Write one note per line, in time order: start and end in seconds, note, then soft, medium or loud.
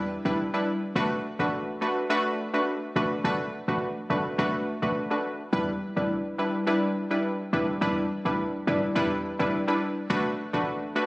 0.00 0.17 E2 loud
0.00 0.22 G3 loud
0.00 0.22 D4 medium
0.00 0.22 E4 medium
0.00 0.22 B4 loud
0.25 0.36 D2 loud
0.25 0.45 G3 medium
0.25 0.45 D4 medium
0.25 0.45 E4 medium
0.25 0.45 B4 medium
0.54 0.74 G3 medium
0.54 0.74 D4 medium
0.54 0.74 E4 medium
0.54 0.74 B4 medium
0.96 1.19 B1 loud
0.96 1.17 A3 medium
0.96 1.17 D4 medium
0.96 1.17 F#4 medium
0.96 1.17 B4 loud
1.39 1.74 A1 medium
1.39 1.78 A3 medium
1.39 1.78 D4 medium
1.39 1.78 F#4 medium
1.39 1.78 B4 medium
1.81 2.08 A3 medium
1.81 2.08 D4 medium
1.81 2.08 F#4 medium
1.81 2.08 B4 medium
2.10 2.50 A3 loud
2.10 2.50 D4 medium
2.10 2.50 F#4 medium
2.10 2.50 B4 loud
2.54 2.74 A3 medium
2.54 2.74 D4 medium
2.54 2.74 F#4 medium
2.54 2.74 B4 medium
2.96 3.08 A1 medium
2.96 3.17 A3 medium
2.96 3.17 D4 medium
2.96 3.17 F#4 medium
2.96 3.17 B4 medium
3.24 3.48 B1 loud
3.24 3.45 A3 medium
3.24 3.45 D4 medium
3.24 3.45 F#4 medium
3.24 3.46 B4 loud
3.68 3.91 A1 loud
3.68 4.07 A3 medium
3.68 4.07 D4 medium
3.68 4.07 F#4 medium
3.68 4.07 B4 medium
4.10 4.22 B1 loud
4.10 4.36 A3 medium
4.10 4.36 D4 medium
4.10 4.37 F#4 medium
4.10 4.37 B4 medium
4.38 4.74 B1 loud
4.38 4.79 A3 loud
4.38 4.79 D4 medium
4.38 4.79 F#4 medium
4.38 4.79 B4 loud
4.82 4.93 A1 medium
4.82 5.02 A3 medium
4.82 5.02 D4 medium
4.82 5.02 F#4 medium
4.82 5.02 B4 medium
5.11 5.31 A3 medium
5.11 5.31 D4 medium
5.11 5.31 F#4 medium
5.11 5.31 B4 medium
5.53 5.76 E2 loud
5.53 5.74 G3 loud
5.53 5.74 D4 medium
5.53 5.74 E4 medium
5.53 5.74 B4 loud
5.96 6.31 D2 medium
5.96 6.35 G3 medium
5.96 6.35 D4 medium
5.96 6.35 E4 medium
5.96 6.36 B4 medium
6.38 6.65 G3 medium
6.38 6.65 D4 medium
6.38 6.65 E4 medium
6.38 6.65 B4 medium
6.67 7.07 G3 medium
6.67 7.07 D4 medium
6.67 7.07 E4 medium
6.67 7.07 B4 loud
7.11 7.31 G3 medium
7.11 7.31 D4 medium
7.11 7.31 E4 medium
7.11 7.31 B4 medium
7.53 7.65 D2 loud
7.53 7.74 G3 medium
7.53 7.74 D4 medium
7.53 7.74 E4 medium
7.53 7.74 B4 medium
7.81 8.05 E2 loud
7.81 8.02 G3 loud
7.81 8.02 D4 medium
7.81 8.02 E4 medium
7.81 8.03 B4 loud
8.25 8.49 D2 medium
8.25 8.64 G3 medium
8.25 8.64 D4 medium
8.25 8.64 E4 medium
8.25 8.64 B4 medium
8.67 8.80 F#2 loud
8.67 8.94 G3 medium
8.67 8.94 D4 medium
8.67 8.94 E4 medium
8.67 8.94 B4 medium
8.95 9.32 E2 loud
8.95 9.36 G3 loud
8.95 9.36 D4 medium
8.95 9.36 E4 medium
8.95 9.36 B4 loud
9.39 9.51 D2 medium
9.39 9.59 G3 medium
9.39 9.59 D4 medium
9.39 9.59 E4 medium
9.39 9.60 B4 medium
9.68 9.88 G3 medium
9.68 9.88 D4 medium
9.68 9.88 E4 medium
9.68 9.88 B4 medium
10.10 10.34 B1 loud
10.10 10.31 A3 medium
10.10 10.31 D4 medium
10.10 10.31 F#4 medium
10.10 10.31 B4 loud
10.53 10.88 A1 loud
10.53 10.92 A3 medium
10.53 10.92 D4 medium
10.53 10.93 F#4 medium
10.53 10.93 B4 medium
10.95 11.06 A3 medium
10.95 11.06 D4 medium
10.95 11.06 F#4 medium
10.95 11.06 B4 medium